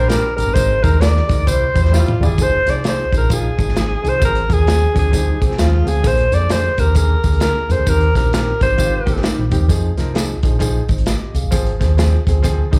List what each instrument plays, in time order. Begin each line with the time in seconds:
Already playing: fingered electric bass A#1, alto saxophone C5
0.08 grand piano G3 D4 A#4, alto saxophone A#4, snare, closed hi-hat, tambourine
0.36 fingered electric bass G#1, grand piano G3 D4 A#4, alto saxophone A#4, closed hi-hat, tambourine
0.46 fingered electric bass G1
0.54 fingered electric bass G#1, grand piano G#3 D#4 A#4, alto saxophone C5, kick, closed hi-hat, tambourine
0.82 fingered electric bass D#2, grand piano G#3 D#4 A#4, alto saxophone A#4, kick, closed hi-hat, tambourine
0.99 grand piano G#3 D#4 A#4, alto saxophone D5, snare, closed hi-hat, tambourine
1.16 snare
1.27 fingered electric bass D2, grand piano G#3 D#4 A#4, kick, closed hi-hat, tambourine
1.46 fingered electric bass C2, grand piano G3 E4 C5, alto saxophone C5, kick, closed hi-hat, tambourine
1.74 fingered electric bass E2, grand piano G3 E4 C5, kick, closed hi-hat, tambourine
1.85 snare
1.91 grand piano G3 E4 C5, snare, tambourine
1.95 alto saxophone F4
2.08 mid tom
2.20 fingered electric bass D2, grand piano G3 E4 D5, floor tom, tambourine
2.25 alto saxophone G#4
2.29 fingered electric bass G1
2.38 fingered electric bass F1, grand piano F3 D#4 G#4, kick, closed hi-hat, tambourine
2.42 alto saxophone C5
2.66 fingered electric bass C2, grand piano F3 D#4 G#4, snare, closed hi-hat, tambourine
2.70 alto saxophone D5
2.84 grand piano F3 D#4 G#4, snare, closed hi-hat, tambourine
2.88 alto saxophone C5
3.12 fingered electric bass A#1, grand piano F3 D#4 G#4, kick, closed hi-hat, tambourine
3.17 alto saxophone A#4
3.29 grand piano F3 D#4 F4, kick, closed hi-hat, tambourine
3.33 alto saxophone G#4
3.57 fingered electric bass G#1, grand piano F3 D#4 G#4, kick, closed hi-hat, tambourine
3.69 snare
3.75 grand piano F3 D#4 G#4, snare, closed hi-hat, tambourine
4.02 fingered electric bass C2, grand piano F3 D#4 G#4, closed hi-hat
4.07 alto saxophone C5, tambourine
4.19 fingered electric bass G#1, grand piano F3 C4 G#4, kick, closed hi-hat, tambourine
4.25 alto saxophone A#4
4.35 closed hi-hat
4.47 fingered electric bass D#2, grand piano F3 C4 G#4, kick, closed hi-hat
4.52 alto saxophone G#4, tambourine
4.64 grand piano F3 C4 G#4, snare, closed hi-hat
4.70 tambourine
4.93 fingered electric bass D2, grand piano F3 C4 D4, kick, closed hi-hat, tambourine
4.99 alto saxophone G#4
5.11 grand piano F3 C4 G#4, clean electric guitar G3 D#4, kick, closed hi-hat, tambourine
5.40 fingered electric bass C2, grand piano F3 C4 G#4, clean electric guitar C4 G#4, kick, closed hi-hat, tambourine
5.51 snare
5.57 fingered electric bass D#2, grand piano F3 C4 G#4, clean electric guitar G#3 F4, snare, closed hi-hat, tambourine
5.61 alto saxophone F4
5.84 fingered electric bass D2, grand piano F3 C4 G#4, closed hi-hat, tambourine
5.88 alto saxophone G#4
6.02 fingered electric bass A#1, grand piano D3 A#3 G#4, kick, closed hi-hat, tambourine
6.07 alto saxophone C5
6.18 closed hi-hat
6.31 fingered electric bass F2, grand piano D3 A#3 G#4, alto saxophone D5, closed hi-hat, tambourine
6.49 grand piano D3 A#3 G#4, alto saxophone C5, snare, closed hi-hat, tambourine
6.78 fingered electric bass D#2, grand piano D3 A#3 G4, alto saxophone A#4, kick, closed hi-hat, tambourine
6.95 grand piano D3 A#3 G#4, alto saxophone A#4, kick, closed hi-hat, tambourine
7.24 fingered electric bass D2, grand piano D3 A#3 G#4, kick, closed hi-hat, tambourine
7.33 closed hi-hat
7.40 grand piano D3 A#3 G#4, alto saxophone A#4, snare, closed hi-hat, tambourine
7.69 fingered electric bass F2, grand piano D3 A#3 G#4, alto saxophone C5, closed hi-hat, tambourine
7.79 fingered electric bass D2
7.86 fingered electric bass D#2, grand piano D#3 C4 G4, alto saxophone A#4, kick, closed hi-hat, tambourine
8.01 closed hi-hat
8.15 fingered electric bass A#1, grand piano D#3 C4 G4, alto saxophone A#4, kick, snare, closed hi-hat, tambourine
8.32 grand piano D#3 C4 G4, alto saxophone A#4, snare, closed hi-hat, tambourine
8.60 fingered electric bass G#1, grand piano D#3 C4 G4, alto saxophone C5, kick, closed hi-hat, tambourine
8.78 grand piano D#3 C4 G4, clean electric guitar F4, kick, closed hi-hat, tambourine
9.05 fingered electric bass G1, grand piano D#3 C4 G4, clean electric guitar A#3 G4, kick, closed hi-hat, tambourine
9.16 snare
9.22 grand piano D#3 C4 G4, clean electric guitar G3 D#4, snare, closed hi-hat, tambourine
9.39 fingered electric bass A#1
9.51 fingered electric bass D2, grand piano D#3 C4 G4, kick, closed hi-hat, tambourine
9.61 fingered electric bass D#2
9.68 fingered electric bass F2, grand piano F3 D#4 G#4, kick, closed hi-hat, tambourine
9.97 fingered electric bass C2, grand piano F3 D#4 A#4, snare, closed hi-hat, tambourine
10.13 grand piano F3 D#4 G#4, snare, closed hi-hat
10.18 tambourine
10.43 fingered electric bass A#1, grand piano F3 D#4 G#4, kick, closed hi-hat, tambourine
10.59 grand piano F3 D#4 G#4, kick, closed hi-hat, tambourine
10.89 fingered electric bass G#1, grand piano D#4 C5, kick, closed hi-hat, tambourine
10.98 closed hi-hat
11.06 grand piano G4 D#5, snare, closed hi-hat, tambourine
11.34 fingered electric bass C2, grand piano G#4 F5, closed hi-hat, tambourine
11.42 fingered electric bass G1
11.51 fingered electric bass G#1, grand piano F3 C4 G#4, kick, closed hi-hat, tambourine
11.66 closed hi-hat
11.79 fingered electric bass D#2, grand piano F3 C4 G#4, kick, snare, closed hi-hat, tambourine
11.97 grand piano F3 C4 G#4, snare, closed hi-hat, tambourine
12.26 fingered electric bass D2, grand piano F3 C4 G#4, kick, closed hi-hat, tambourine
12.42 grand piano F3 C4 G#4, kick, closed hi-hat, tambourine
12.71 fingered electric bass C2, grand piano F3 C4 G#4, clean electric guitar G3 D#4, kick, closed hi-hat, tambourine